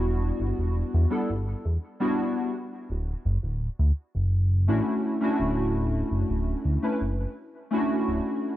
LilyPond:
<<
  \new Staff \with { instrumentName = "Synth keys" } { \time 4/4 \key d \major \tempo 4 = 84 <g b d' e' fis'>4. <g b d' e' a'>16 r4 <g b d' e' fis'>8. r8 | r2 r8 <a cis' d' e' fis'>8. <a cis' d' e' fis'>8.~ | <a cis' d' e' fis'>4. <a cis' d' e' b'>16 r4 <a cis' d' e' fis'>4~ <a cis' d' e' fis'>16 | }
  \new Staff \with { instrumentName = "Analog synth bass" } { \clef bass \time 4/4 \key d \major e,,8 g,,16 e,,16 r16 e,16 r16 g,,16 r16 e,16 r4. | d,,16 r16 fis,,16 d,,16 r16 d,16 r16 fis,,8. a,,16 r8. d,,8~ | d,,8 fis,,16 d,,16 r16 d,16 r16 fis,,16 r4 r16 d,,16 r8 | }
>>